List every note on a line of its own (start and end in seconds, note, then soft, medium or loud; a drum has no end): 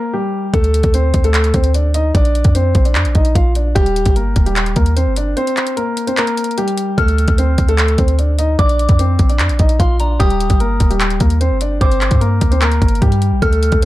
0.00 0.11 A#3 medium
0.00 0.11 A#4 medium
0.13 0.52 G3 medium
0.13 0.51 G4 medium
0.53 0.83 D2 loud
0.53 0.92 A3 medium
0.53 0.91 A4 loud
0.53 kick loud
0.53 closed hi-hat medium
0.64 closed hi-hat medium
0.74 closed hi-hat medium
0.83 1.13 D2 loud
0.83 kick loud
0.83 closed hi-hat medium
0.94 1.23 C4 medium
0.94 1.22 C5 medium
0.94 closed hi-hat medium
1.14 1.53 D2 loud
1.14 kick medium
1.14 closed hi-hat medium
1.24 1.53 A3 medium
1.24 1.53 A4 loud
1.24 closed hi-hat medium
1.34 clap loud
1.34 closed hi-hat medium
1.44 closed hi-hat medium
1.54 2.12 D2 loud
1.54 1.70 C4 medium
1.54 1.69 C5 medium
1.54 kick medium
1.54 closed hi-hat medium
1.64 closed hi-hat medium
1.74 1.90 D4 medium
1.74 1.90 D5 medium
1.74 closed hi-hat medium
1.94 2.10 D#4 medium
1.94 2.10 D#5 medium
1.94 closed hi-hat medium
2.15 2.44 A#1 loud
2.15 2.53 D4 medium
2.15 2.53 D5 loud
2.15 kick loud
2.15 closed hi-hat medium
2.25 closed hi-hat medium
2.35 closed hi-hat medium
2.44 2.74 F2 loud
2.44 kick medium
2.44 closed hi-hat medium
2.55 2.84 C4 medium
2.55 2.83 C5 medium
2.55 closed hi-hat medium
2.75 2.97 A#1 loud
2.75 kick medium
2.75 closed hi-hat medium
2.85 3.14 D4 medium
2.85 3.13 D5 medium
2.85 closed hi-hat medium
2.95 3.07 F2 loud
2.95 clap loud
2.95 closed hi-hat medium
3.05 3.15 A#1 loud
3.05 closed hi-hat medium
3.15 3.35 A#1 loud
3.15 3.31 D#4 medium
3.15 3.31 D#5 medium
3.15 kick medium
3.15 closed hi-hat medium
3.25 closed hi-hat medium
3.35 3.74 A#1 loud
3.35 3.51 F4 medium
3.35 3.50 F5 medium
3.35 kick medium
3.35 closed hi-hat medium
3.55 3.72 D4 medium
3.55 3.71 D5 medium
3.55 closed hi-hat medium
3.75 4.05 D#1 loud
3.75 4.14 G3 medium
3.75 4.13 G4 loud
3.75 kick loud
3.75 closed hi-hat medium
3.86 closed hi-hat medium
3.96 closed hi-hat medium
4.05 4.35 G1 loud
4.05 kick medium
4.05 closed hi-hat medium
4.16 4.45 A#3 medium
4.16 4.44 A#4 medium
4.16 closed hi-hat medium
4.36 4.75 D#1 loud
4.36 kick medium
4.36 closed hi-hat medium
4.46 4.75 G3 medium
4.46 4.75 G4 medium
4.46 closed hi-hat medium
4.56 clap loud
4.56 closed hi-hat medium
4.66 closed hi-hat medium
4.76 5.08 D#2 loud
4.76 4.92 A#3 medium
4.76 4.91 A#4 medium
4.76 kick medium
4.76 closed hi-hat medium
4.86 closed hi-hat medium
4.96 5.12 C4 medium
4.96 5.12 C5 medium
4.96 closed hi-hat medium
5.07 5.35 G1 loud
5.16 5.33 D4 medium
5.16 5.32 D5 medium
5.16 closed hi-hat medium
5.37 5.75 C4 medium
5.37 5.75 C5 loud
5.37 closed hi-hat medium
5.47 closed hi-hat medium
5.57 clap medium
5.57 closed hi-hat medium
5.67 closed hi-hat medium
5.77 6.06 A#3 medium
5.77 6.05 A#4 medium
5.77 closed hi-hat medium
5.97 closed hi-hat medium
6.07 6.15 C4 medium
6.07 6.15 C5 medium
6.07 closed hi-hat medium
6.17 6.56 A#3 medium
6.17 6.55 A#4 loud
6.17 clap loud
6.17 closed hi-hat medium
6.27 closed hi-hat medium
6.37 closed hi-hat medium
6.44 closed hi-hat medium
6.51 closed hi-hat soft
6.58 6.96 G3 medium
6.58 6.96 G4 medium
6.58 closed hi-hat medium
6.68 closed hi-hat soft
6.78 closed hi-hat medium
6.98 7.27 D2 loud
6.98 7.36 A3 medium
6.98 7.36 A4 loud
6.98 7.74 F6 loud
6.98 kick loud
6.98 closed hi-hat medium
7.08 closed hi-hat medium
7.18 closed hi-hat medium
7.28 7.57 D2 loud
7.28 kick loud
7.28 closed hi-hat medium
7.38 7.67 C4 medium
7.38 7.67 C5 medium
7.38 closed hi-hat medium
7.58 7.97 D2 loud
7.58 kick medium
7.58 closed hi-hat medium
7.68 7.97 A3 medium
7.68 7.97 A4 loud
7.68 closed hi-hat medium
7.78 clap loud
7.78 closed hi-hat medium
7.88 closed hi-hat medium
7.98 8.56 D2 loud
7.98 8.14 C4 medium
7.98 8.14 C5 medium
7.98 kick medium
7.98 closed hi-hat medium
8.08 closed hi-hat medium
8.19 8.34 D4 medium
8.19 8.34 D5 medium
8.19 closed hi-hat medium
8.39 8.54 D#4 medium
8.39 8.54 D#5 medium
8.39 closed hi-hat medium
8.59 8.88 A#1 loud
8.59 8.97 D4 medium
8.59 8.97 D5 loud
8.59 9.35 D6 loud
8.59 kick loud
8.59 closed hi-hat medium
8.69 closed hi-hat medium
8.79 closed hi-hat medium
8.89 9.18 F2 loud
8.89 kick medium
8.89 closed hi-hat medium
8.99 9.28 C4 medium
8.99 9.28 C5 medium
8.99 closed hi-hat medium
9.19 9.41 A#1 loud
9.19 kick medium
9.19 closed hi-hat medium
9.29 9.58 D4 medium
9.29 9.58 D5 medium
9.29 closed hi-hat medium
9.39 9.51 F2 loud
9.39 clap loud
9.39 closed hi-hat medium
9.49 9.59 A#1 loud
9.49 closed hi-hat medium
9.59 9.79 A#1 loud
9.59 9.75 D#4 medium
9.59 9.75 D#5 medium
9.59 kick medium
9.59 closed hi-hat medium
9.69 closed hi-hat medium
9.79 10.18 A#1 loud
9.79 9.95 F4 medium
9.79 9.95 F5 medium
9.79 9.99 C6 medium
9.79 kick loud
9.79 closed hi-hat medium
10.00 10.16 D4 medium
10.00 10.15 D5 medium
10.00 10.19 A#5 medium
10.00 closed hi-hat medium
10.20 10.49 D#1 loud
10.20 10.58 G3 medium
10.20 10.58 G4 loud
10.20 10.96 D#6 loud
10.20 kick loud
10.20 closed hi-hat medium
10.30 closed hi-hat medium
10.40 closed hi-hat medium
10.50 10.79 G1 loud
10.50 kick medium
10.50 closed hi-hat medium
10.60 10.89 A#3 medium
10.60 10.89 A#4 medium
10.60 closed hi-hat medium
10.80 11.19 D#1 loud
10.80 kick medium
10.80 closed hi-hat medium
10.90 11.19 G3 medium
10.90 11.19 G4 medium
10.90 closed hi-hat medium
11.00 clap loud
11.00 closed hi-hat medium
11.10 closed hi-hat medium
11.20 11.52 D#2 loud
11.20 11.36 A#3 medium
11.20 11.36 A#4 medium
11.20 kick medium
11.20 closed hi-hat medium
11.30 closed hi-hat medium
11.41 11.56 C4 medium
11.41 11.56 C5 medium
11.41 closed hi-hat medium
11.51 11.80 G1 loud
11.61 11.77 D4 medium
11.61 11.76 D5 medium
11.61 closed hi-hat medium
11.81 12.10 G1 loud
11.81 12.19 C4 medium
11.81 12.19 C5 loud
11.81 12.58 D6 medium
11.81 kick loud
11.81 closed hi-hat medium
11.92 closed hi-hat medium
12.01 clap medium
12.01 closed hi-hat medium
12.11 12.40 G2 loud
12.11 kick medium
12.11 closed hi-hat medium
12.21 12.50 A#3 medium
12.21 12.49 A#4 medium
12.21 closed hi-hat medium
12.41 12.80 D2 loud
12.41 kick medium
12.41 closed hi-hat medium
12.51 12.60 C4 medium
12.51 12.59 C5 medium
12.51 closed hi-hat medium
12.62 13.00 A#3 medium
12.62 13.00 A#4 loud
12.62 clap loud
12.62 closed hi-hat medium
12.72 closed hi-hat medium
12.82 13.01 G1 loud
12.82 kick medium
12.82 closed hi-hat medium
12.88 closed hi-hat medium
12.95 closed hi-hat soft
13.02 13.34 G2 loud
13.02 13.40 G3 medium
13.02 13.40 G4 medium
13.02 kick loud
13.02 closed hi-hat medium
13.12 closed hi-hat soft
13.22 closed hi-hat medium
13.32 13.42 A#1 medium
13.42 13.71 D2 loud
13.42 13.80 A3 medium
13.42 13.80 A4 loud
13.42 13.85 F6 medium
13.42 kick loud
13.42 closed hi-hat medium
13.53 closed hi-hat medium
13.63 closed hi-hat medium
13.72 13.85 D2 loud
13.72 kick loud
13.72 closed hi-hat medium